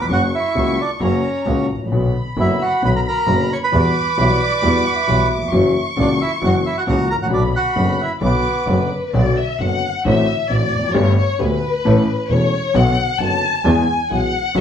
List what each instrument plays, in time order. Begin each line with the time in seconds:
Already playing: violin section D6
0.01 grand piano F2, bandoneon B4 B5
0.09 double bass F#1, grand piano F#2 C#3 F#3 A#3 F#4, bandoneon F#4 F#5, violin section C#6
0.35 bandoneon E4 E5
0.55 double bass C#2, grand piano C#2 C#3 F#3 A#3 F#4
0.81 bandoneon D4 D5
1.00 double bass F#1, grand piano F#2 C#3 F#3 A#3 F#4, bandoneon C#4, violin section A#5
1.04 bandoneon C#5
1.45 grand piano C#2 C#3 F#3 A#3 F#4, double bass C#2
1.69 double bass A1
1.75 grand piano G#1
1.81 grand piano A1
1.86 grand piano A#1
1.91 double bass B1, grand piano B1 B2 D3 F#3 B3 F#4, violin section B5
2.36 grand piano F#1 F#2 D3 F#3 B3 F#4, double bass F#1, bandoneon E4
2.41 bandoneon E5
2.62 bandoneon F#4 F#5
2.82 grand piano B1 B2 D3 F#3 B3 F#4, double bass B1, bandoneon B4 B5
2.96 bandoneon A#4 A#5
3.08 bandoneon A#4 A#5
3.27 double bass F#1, grand piano F#1 F#2 D3 F#3 B3 F#4
3.53 bandoneon C#5 C#6
3.64 bandoneon B4 B5
3.72 grand piano E2 E3 G3 B3 F#4, double bass E2, violin section D6
4.17 grand piano B1 B2 E3 G3 B3 F#4, double bass B1, flute E5
4.30 flute D5
4.41 flute D5
4.62 grand piano E2 E3 G3 B3 F#4, double bass E2
4.86 flute F#5
4.96 flute E5
5.07 grand piano B1 B2 E3 G3 B3 F#4, double bass B1
5.36 grand piano D#2
5.42 grand piano E2
5.47 grand piano F2
5.52 double bass F#1, grand piano F#2 E3 F#3 A#3 C#4 F#4, violin section C#6
5.96 grand piano C#2 C#3 E3 A#3 C#4 F#4, double bass C#2, bandoneon D5
6.01 bandoneon D4
6.22 bandoneon E4 E5
6.41 double bass F#1, grand piano F#2 E3 F#3 A#3 C#4 F#4, bandoneon F#5
6.46 bandoneon F#4
6.66 bandoneon E4 E5
6.78 bandoneon F#4 F#5
6.87 grand piano C#2 C#3 E3 A#3 C#4 F#4, double bass C#2, bandoneon F#4 F#5, violin section A#5
7.10 grand piano G#1, double bass A1, bandoneon A#4 A#5
7.20 grand piano A1, bandoneon F#4 F#5
7.25 grand piano A#1
7.30 grand piano B1 B2 D3 F#3 B3 F#4, double bass B1, bandoneon D5, violin section B5
7.34 bandoneon D4
7.56 bandoneon F#4 F#5
7.75 grand piano F#1 F#2 D3 F#3 B3 F#4, double bass F#1
8.02 bandoneon E4 E5
8.21 grand piano B1 B2 D3 F#3 B3 F#4, double bass B1, violin section D6
8.25 bandoneon B3 B4
8.67 double bass F#1, grand piano F#1 F#2 D3 F#3 B3 F#4, violin section B4
9.13 double bass B1, grand piano B1 B2 D3 F#3 B3 F#4, violin section D5
9.37 violin section E5
9.59 double bass F#1, grand piano F#1 F#2 D3 F#3 B3 F#4, violin section F#5
10.05 double bass A1, grand piano A1 A2 D3 A3 C4 F#4, violin section E5
10.50 grand piano A1 A2 D3 A3 C4 F#4, double bass A1, violin section D5
10.73 double bass F1
10.79 grand piano E2
10.84 grand piano F2
10.89 grand piano F#2
10.94 grand piano G1 G2 D3 A3 B3 G4, double bass G1, violin section C#5
11.17 violin section C#5
11.38 grand piano D2 D3 A3 B3 G4, double bass D2, violin section B4
11.85 grand piano A1 A2 E3 A3 C#4 A4, double bass A1
12.29 grand piano E1 E2 E3 A3 C#4 A4, double bass E1, violin section C#5
12.74 grand piano B1 B2 D3 F#3 B3 F#4, double bass B1, violin section F#5
13.19 double bass F#1, grand piano F#1 F#2 D3 F#3 B3 F#4, violin section A5
13.65 double bass E2, grand piano E2 E3 G#3 B3 G#4, violin section G#5
14.10 double bass B1, grand piano B1 B2 E3 G#3 B3 G#4, violin section F#5
14.55 double bass F#1, grand piano F#2 D3 F#3 B3 F#4, violin section E5